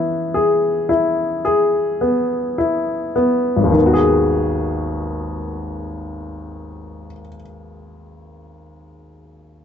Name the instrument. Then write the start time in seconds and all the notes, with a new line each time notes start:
grand piano
Already playing: E3 B3 E4
0.34 G#4
0.89 E4
1.45 G#4
2.01 B3
2.58 E4
3.16 B3
3.56 G#1
3.64 D#2
3.71 D#3
3.79 B3
3.86 F#4
3.94 G#4